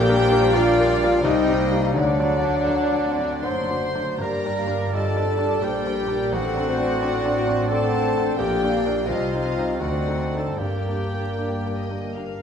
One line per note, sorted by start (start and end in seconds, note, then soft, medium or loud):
0.00 1.23 A#1 medium
0.00 1.25 A#1 loud
0.00 1.23 A#2 medium
0.00 0.18 A#3 loud
0.00 1.22 A#3 medium
0.00 0.53 G4 loud
0.00 0.55 G4 loud
0.00 0.18 A#4 medium
0.00 1.20 D5 medium
0.00 1.25 D5 medium
0.00 0.53 G5 loud
0.00 1.21 G5 medium
0.09 0.29 G3 medium
0.09 0.29 D4 medium
0.09 0.29 A#4 medium
0.18 0.52 D4 medium
0.18 0.54 C5 medium
0.30 0.51 G3 medium
0.30 0.51 D4 medium
0.30 0.52 A#4 medium
0.54 0.75 G3 medium
0.54 1.22 D4 medium
0.54 0.75 D4 medium
0.54 1.08 F4 medium
0.54 1.23 F4 loud
0.54 0.75 A#4 medium
0.54 0.89 D5 medium
0.54 1.24 F5 medium
0.79 0.99 G3 medium
0.79 0.99 D4 medium
0.79 0.99 A#4 medium
0.90 1.23 D5 medium
1.03 1.22 G3 medium
1.03 1.23 D4 medium
1.03 1.23 A#4 medium
1.22 1.92 C2 medium
1.22 1.46 C2 medium
1.22 1.92 C3 medium
1.22 1.95 G3 medium
1.22 1.59 C4 medium
1.22 1.93 D#4 loud
1.22 1.69 D#4 medium
1.22 1.93 G4 medium
1.22 1.93 C5 medium
1.22 1.95 D#5 medium
1.22 1.59 D#5 medium
1.22 1.93 G5 medium
1.48 1.69 G3 medium
1.48 1.69 D#4 medium
1.48 1.69 G4 medium
1.59 1.94 A#3 medium
1.59 1.95 F5 medium
1.71 1.92 G3 medium
1.71 1.93 D#4 medium
1.71 1.93 G4 medium
1.92 3.44 D2 medium
1.92 2.19 D2 medium
1.92 3.44 D3 medium
1.92 3.14 F#3 medium
1.92 2.60 A3 medium
1.92 3.43 D4 loud
1.92 3.47 D4 medium
1.92 2.60 F#4 medium
1.92 3.11 D5 medium
1.92 3.95 D5 medium
1.92 3.42 D5 medium
1.92 3.82 F#5 medium
2.19 2.41 F#3 medium
2.19 2.41 D4 medium
2.19 2.41 D5 medium
2.43 2.65 F#3 medium
2.43 2.65 D4 medium
2.43 2.65 D5 medium
2.66 2.89 F#3 medium
2.66 3.03 A3 medium
2.66 2.90 D4 medium
2.66 2.89 D5 medium
2.92 3.16 F#3 soft
2.92 3.16 D4 medium
2.92 3.16 D5 medium
3.06 3.45 C4 medium
3.19 3.42 F#3 soft
3.19 3.42 D4 soft
3.19 3.43 D5 medium
3.44 3.99 F#1 medium
3.44 3.99 F#2 medium
3.44 3.67 F#3 soft
3.44 3.83 F#3 medium
3.44 3.82 A#3 medium
3.44 3.68 D4 soft
3.44 4.19 C5 medium
3.44 4.23 C5 medium
3.44 3.83 D5 medium
3.44 3.68 D5 medium
3.44 4.20 C6 medium
3.70 3.92 F#3 soft
3.70 3.92 D4 soft
3.70 3.93 D5 soft
3.83 4.20 A3 medium
3.95 4.17 F#3 soft
3.95 4.17 D4 soft
3.95 4.17 D5 soft
4.18 5.60 G1 medium
4.18 4.43 G2 medium
4.18 5.59 G2 medium
4.18 5.59 G3 medium
4.18 4.88 A#3 medium
4.18 4.54 G4 medium
4.18 4.75 A#4 medium
4.18 4.95 A#4 medium
4.18 5.58 D5 medium
4.18 4.54 D5 medium
4.18 4.89 D5 medium
4.18 4.91 A#5 medium
4.45 4.65 G3 soft
4.45 4.65 D4 medium
4.45 4.66 D5 medium
4.57 4.92 G4 medium
4.57 4.93 F5 medium
4.67 4.89 G3 soft
4.67 4.89 D4 medium
4.67 4.89 D5 medium
4.92 5.14 G3 soft
4.92 5.27 C4 medium
4.92 5.15 D4 soft
4.92 5.61 F4 medium
4.92 5.61 A4 medium
4.92 5.63 A4 medium
4.92 8.34 D5 medium
4.92 5.14 D5 medium
4.92 5.28 D#5 medium
4.92 5.62 A5 medium
5.16 5.35 G3 soft
5.16 5.36 D4 medium
5.16 5.37 D5 medium
5.29 5.63 D4 medium
5.29 5.63 D5 medium
5.37 5.59 G3 soft
5.37 5.59 D4 medium
5.37 5.60 D5 medium
5.62 6.34 A#1 medium
5.62 6.33 A#2 medium
5.62 6.35 G3 medium
5.62 5.83 G3 medium
5.62 5.97 A#3 medium
5.62 5.84 D4 medium
5.62 6.33 G4 medium
5.62 6.36 G4 medium
5.62 5.98 C5 medium
5.62 6.32 D5 medium
5.62 5.84 D5 medium
5.62 6.32 G5 medium
5.86 6.06 G3 medium
5.86 6.07 D4 medium
5.86 6.06 D5 medium
6.00 6.33 A#3 medium
6.00 6.34 A#4 medium
6.07 6.30 G3 medium
6.07 6.30 D4 medium
6.07 6.29 D5 medium
6.32 6.55 A1 medium
6.32 8.38 A1 medium
6.32 8.38 A2 medium
6.32 7.70 C4 medium
6.32 6.68 D4 medium
6.32 7.70 F#4 medium
6.32 7.70 F#4 loud
6.32 7.01 A4 medium
6.32 6.68 A4 medium
6.32 7.67 D5 medium
6.32 7.67 F#5 medium
6.57 6.76 C4 medium
6.57 6.76 D4 medium
6.57 6.77 D5 medium
6.68 7.02 C4 medium
6.68 7.02 C5 medium
6.77 6.98 C4 medium
6.77 6.99 D4 medium
6.77 6.99 D5 medium
7.02 7.22 C4 medium
7.02 8.36 D4 medium
7.02 7.22 D4 medium
7.02 7.35 A4 medium
7.02 7.22 D5 medium
7.02 7.68 D5 medium
7.25 7.45 C4 medium
7.25 7.45 D4 medium
7.25 7.45 D5 medium
7.37 7.70 C5 medium
7.47 7.68 C4 medium
7.47 7.67 D4 medium
7.47 7.68 D5 medium
7.68 8.39 C4 medium
7.68 7.90 C4 medium
7.68 8.37 A4 medium
7.68 8.38 A4 loud
7.68 8.36 D5 medium
7.68 8.03 D5 medium
7.68 8.36 F#5 medium
7.68 8.38 A5 medium
7.72 7.91 D4 medium
7.72 7.91 D5 medium
7.92 8.12 C4 medium
7.92 8.13 D4 medium
7.92 8.13 D5 medium
8.05 8.38 C5 medium
8.17 8.36 C4 medium
8.17 8.37 D4 medium
8.17 8.37 D5 medium
8.37 9.06 A#1 medium
8.37 8.61 A#1 medium
8.37 9.05 A#2 medium
8.37 9.08 A#3 medium
8.37 9.05 D4 medium
8.37 9.05 G4 loud
8.37 8.82 G4 medium
8.37 8.71 A#4 medium
8.37 9.07 D5 medium
8.37 9.06 D5 medium
8.37 8.71 G5 medium
8.37 9.06 G5 medium
8.64 8.83 A#3 medium
8.64 8.83 D4 medium
8.64 8.84 D5 medium
8.71 9.06 A#4 medium
8.71 9.06 F5 medium
8.86 9.05 A#3 soft
8.86 9.06 D4 medium
8.86 9.06 D5 medium
9.05 9.79 C2 medium
9.05 9.79 C3 medium
9.05 9.79 C4 medium
9.05 9.79 F4 medium
9.05 9.82 F4 medium
9.05 9.79 G4 medium
9.05 9.78 D#5 medium
9.05 9.79 D#5 medium
9.05 9.42 D#5 medium
9.05 9.79 F5 medium
9.10 9.31 C2 medium
9.34 9.54 G3 soft
9.34 9.54 D#4 soft
9.34 9.55 C5 medium
9.43 9.79 D#5 medium
9.57 9.78 G3 soft
9.57 9.79 D#4 soft
9.57 9.79 C5 soft
9.77 10.57 D2 medium
9.77 10.04 D2 medium
9.77 10.57 D3 medium
9.77 10.57 A3 soft
9.77 10.60 C4 medium
9.77 10.56 D4 medium
9.77 10.35 F#4 medium
9.77 10.39 F#4 medium
9.77 10.57 D5 medium
9.77 10.56 D5 medium
9.77 10.58 D#5 medium
9.82 10.38 F#5 medium
10.07 10.29 C4 soft
10.07 10.30 D#4 soft
10.07 10.30 A4 soft
10.34 10.56 C4 soft
10.34 10.57 D#4 soft
10.34 10.56 A4 soft
10.34 10.60 A4 medium
10.34 10.57 A4 medium
10.38 10.57 A5 medium
10.57 12.42 G1 soft
10.57 12.42 G2 soft
10.57 10.84 G2 soft
10.57 12.42 A#3 soft
10.57 12.42 D4 soft
10.57 12.14 G4 medium
10.57 12.15 G4 medium
10.57 12.42 A#4 soft
10.57 11.97 D5 soft
10.57 11.28 D5 soft
10.57 12.12 G5 medium
10.88 11.10 A#3 soft
10.88 11.10 D4 soft
10.88 11.10 G4 soft
11.14 11.36 A#3 soft
11.14 11.36 D4 soft
11.14 11.36 G4 soft
11.36 11.61 A#3 soft
11.36 11.61 D4 soft
11.36 11.61 G4 soft
11.36 11.72 D5 soft
11.66 11.88 A#3 soft
11.66 11.88 D4 soft
11.66 11.88 G4 soft
11.76 12.14 D#5 soft
11.90 12.12 A#3 soft
11.90 12.13 D4 soft
11.90 12.13 G4 soft
12.14 12.38 A#3 soft
12.14 12.39 D4 soft
12.14 12.39 G4 soft
12.14 12.42 A#4 medium
12.14 12.42 F5 soft